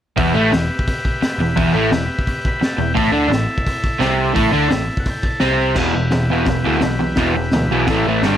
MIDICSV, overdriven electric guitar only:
0, 0, Header, 1, 3, 480
1, 0, Start_track
1, 0, Key_signature, 1, "minor"
1, 0, Tempo, 350058
1, 241, Time_signature, 4, 2, 24, 8
1, 11482, End_track
2, 0, Start_track
2, 0, Title_t, "Overdriven electric guitar"
2, 0, Program_c, 0, 29
2, 227, Note_on_c, 0, 40, 92
2, 243, Note_on_c, 0, 52, 104
2, 458, Note_on_c, 0, 45, 84
2, 466, Note_off_c, 0, 40, 0
2, 475, Note_off_c, 0, 52, 0
2, 476, Note_on_c, 0, 57, 99
2, 702, Note_off_c, 0, 45, 0
2, 711, Note_off_c, 0, 57, 0
2, 716, Note_on_c, 0, 40, 78
2, 910, Note_off_c, 0, 40, 0
2, 1924, Note_on_c, 0, 40, 70
2, 2112, Note_off_c, 0, 40, 0
2, 2141, Note_on_c, 0, 40, 101
2, 2150, Note_on_c, 0, 52, 105
2, 2370, Note_on_c, 0, 45, 86
2, 2381, Note_off_c, 0, 40, 0
2, 2385, Note_on_c, 0, 57, 98
2, 2386, Note_off_c, 0, 52, 0
2, 2616, Note_off_c, 0, 45, 0
2, 2622, Note_on_c, 0, 40, 78
2, 2623, Note_off_c, 0, 57, 0
2, 2821, Note_off_c, 0, 40, 0
2, 3819, Note_on_c, 0, 40, 72
2, 4018, Note_off_c, 0, 40, 0
2, 4041, Note_on_c, 0, 45, 97
2, 4060, Note_on_c, 0, 57, 108
2, 4273, Note_off_c, 0, 45, 0
2, 4279, Note_on_c, 0, 50, 88
2, 4284, Note_off_c, 0, 57, 0
2, 4289, Note_on_c, 0, 62, 91
2, 4510, Note_off_c, 0, 50, 0
2, 4515, Note_on_c, 0, 45, 73
2, 4533, Note_off_c, 0, 62, 0
2, 4725, Note_off_c, 0, 45, 0
2, 5484, Note_on_c, 0, 48, 96
2, 5503, Note_on_c, 0, 60, 95
2, 5953, Note_off_c, 0, 48, 0
2, 5959, Note_on_c, 0, 45, 90
2, 5967, Note_off_c, 0, 60, 0
2, 5973, Note_on_c, 0, 57, 102
2, 6198, Note_off_c, 0, 45, 0
2, 6203, Note_on_c, 0, 50, 88
2, 6210, Note_off_c, 0, 57, 0
2, 6215, Note_on_c, 0, 62, 93
2, 6441, Note_off_c, 0, 50, 0
2, 6447, Note_on_c, 0, 45, 75
2, 6455, Note_off_c, 0, 62, 0
2, 6650, Note_off_c, 0, 45, 0
2, 7408, Note_on_c, 0, 48, 95
2, 7410, Note_on_c, 0, 60, 101
2, 7892, Note_off_c, 0, 48, 0
2, 7893, Note_off_c, 0, 60, 0
2, 7898, Note_on_c, 0, 40, 83
2, 7913, Note_on_c, 0, 47, 89
2, 7921, Note_on_c, 0, 52, 96
2, 8130, Note_off_c, 0, 40, 0
2, 8137, Note_off_c, 0, 47, 0
2, 8142, Note_off_c, 0, 52, 0
2, 8152, Note_on_c, 0, 40, 62
2, 8159, Note_on_c, 0, 47, 67
2, 8367, Note_off_c, 0, 40, 0
2, 8371, Note_off_c, 0, 47, 0
2, 8389, Note_on_c, 0, 40, 81
2, 8392, Note_on_c, 0, 47, 81
2, 8606, Note_off_c, 0, 40, 0
2, 8608, Note_off_c, 0, 47, 0
2, 8644, Note_on_c, 0, 40, 81
2, 8654, Note_on_c, 0, 47, 88
2, 8657, Note_on_c, 0, 52, 94
2, 8864, Note_off_c, 0, 40, 0
2, 8869, Note_off_c, 0, 47, 0
2, 8870, Note_off_c, 0, 52, 0
2, 8879, Note_on_c, 0, 40, 64
2, 8891, Note_on_c, 0, 47, 77
2, 9092, Note_off_c, 0, 40, 0
2, 9098, Note_off_c, 0, 47, 0
2, 9117, Note_on_c, 0, 40, 78
2, 9132, Note_on_c, 0, 47, 85
2, 9133, Note_on_c, 0, 52, 91
2, 9336, Note_off_c, 0, 40, 0
2, 9340, Note_off_c, 0, 47, 0
2, 9349, Note_off_c, 0, 52, 0
2, 9352, Note_on_c, 0, 40, 71
2, 9357, Note_on_c, 0, 47, 80
2, 9569, Note_off_c, 0, 40, 0
2, 9572, Note_off_c, 0, 47, 0
2, 9588, Note_on_c, 0, 40, 66
2, 9597, Note_on_c, 0, 47, 75
2, 9808, Note_off_c, 0, 40, 0
2, 9812, Note_off_c, 0, 47, 0
2, 9830, Note_on_c, 0, 40, 95
2, 9832, Note_on_c, 0, 47, 90
2, 9844, Note_on_c, 0, 52, 105
2, 10059, Note_off_c, 0, 40, 0
2, 10060, Note_off_c, 0, 47, 0
2, 10066, Note_off_c, 0, 52, 0
2, 10076, Note_on_c, 0, 40, 68
2, 10090, Note_on_c, 0, 47, 74
2, 10292, Note_off_c, 0, 40, 0
2, 10300, Note_off_c, 0, 47, 0
2, 10330, Note_on_c, 0, 40, 80
2, 10337, Note_on_c, 0, 47, 81
2, 10540, Note_off_c, 0, 40, 0
2, 10544, Note_off_c, 0, 47, 0
2, 10579, Note_on_c, 0, 40, 80
2, 10587, Note_on_c, 0, 47, 95
2, 10594, Note_on_c, 0, 52, 99
2, 10795, Note_off_c, 0, 40, 0
2, 10799, Note_off_c, 0, 47, 0
2, 10802, Note_off_c, 0, 52, 0
2, 10816, Note_on_c, 0, 45, 89
2, 10828, Note_on_c, 0, 52, 91
2, 10835, Note_on_c, 0, 57, 98
2, 11034, Note_off_c, 0, 45, 0
2, 11040, Note_off_c, 0, 52, 0
2, 11043, Note_off_c, 0, 57, 0
2, 11075, Note_on_c, 0, 52, 86
2, 11077, Note_on_c, 0, 45, 85
2, 11091, Note_on_c, 0, 57, 92
2, 11283, Note_off_c, 0, 52, 0
2, 11285, Note_off_c, 0, 45, 0
2, 11291, Note_off_c, 0, 57, 0
2, 11298, Note_on_c, 0, 50, 95
2, 11300, Note_on_c, 0, 43, 86
2, 11315, Note_on_c, 0, 55, 92
2, 11482, Note_off_c, 0, 43, 0
2, 11482, Note_off_c, 0, 50, 0
2, 11482, Note_off_c, 0, 55, 0
2, 11482, End_track
3, 0, Start_track
3, 0, Title_t, "Muted overdriven electric guitar strokes"
3, 1678, Note_on_c, 9, 29, 62
3, 1815, Note_off_c, 9, 29, 0
3, 3589, Note_on_c, 9, 29, 57
3, 3726, Note_off_c, 9, 29, 0
3, 11482, End_track
0, 0, End_of_file